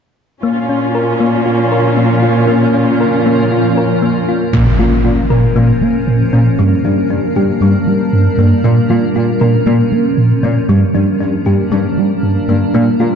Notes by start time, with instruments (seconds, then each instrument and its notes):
0.43 cello section A#2, ambient pad F3 A#3 C#4 A#4, synth pluck A#3, viola section C#4 F4
0.69 synth pluck C#4
0.95 synth pluck A#4
1.20 synth pluck A#3
1.46 synth pluck F4
1.72 synth pluck A#4
1.97 synth pluck A#3
2.22 synth pluck F4
2.48 synth pluck A#3
2.74 synth pluck C#4
3.01 synth pluck A#4
3.26 synth pluck A#3
3.52 synth pluck F4
3.77 synth pluck A#4
4.02 synth pluck A#3
4.29 synth pluck F4
4.53 analog synth bass A#2, cello section A#2, ambient pad F3 A#3 C#4 A#4, synth pluck A#3, impact
4.78 cello section A#2, analog synth bass A#3, synth pluck F4
5.04 cello section A#2, analog synth bass A#3, synth pluck F4
5.30 analog synth bass A#2, cello section A#2, synth pluck A#4
5.56 analog synth bass A#2, cello section A#2, synth pluck A#3
5.81 analog synth bass A#3
6.07 analog synth bass A#2
6.33 analog synth bass A#2, cello section A#2, synth pluck C#4
6.58 analog synth bass G2, cello section G2, synth pluck G3, ambient pad G3 D4
6.84 cello section G2, analog synth bass G3, synth pluck D4
7.10 cello section G2, analog synth bass G3, synth pluck D4
7.36 analog synth bass G2, cello section G2, synth pluck G4
7.60 analog synth bass G2, cello section G2, synth pluck G3
7.87 analog synth bass G3
8.13 analog synth bass G2
8.38 analog synth bass G2, cello section G2, synth pluck A#3
8.64 analog synth bass A#2, cello section A#2, ambient pad F3 C#4, synth pluck A#3
8.90 cello section A#2, analog synth bass A#3, synth pluck F4
9.15 cello section A#2, analog synth bass A#3, synth pluck F4
9.41 analog synth bass A#2, cello section A#2, synth pluck A#4
9.66 analog synth bass A#2, cello section A#2, synth pluck A#3
9.92 analog synth bass A#3
10.17 analog synth bass A#2
10.43 analog synth bass A#2, cello section A#2, synth pluck C#4
10.69 analog synth bass G2, cello section G2, synth pluck G3, ambient pad G3 A#3 D4 A#4
10.94 cello section G2, analog synth bass G3, synth pluck D4
11.20 cello section G2, analog synth bass G3, synth pluck D4
11.46 analog synth bass G2, cello section G2, synth pluck G4
11.71 analog synth bass G2, cello section G2, synth pluck G3
11.97 analog synth bass G3
12.23 analog synth bass G2
12.48 analog synth bass G2, cello section G2, synth pluck A#3
12.74 analog synth bass A#2, cello section A#2, ambient pad F3 C#4, synth pluck A#3
13.00 cello section A#2, analog synth bass A#3, synth pluck F4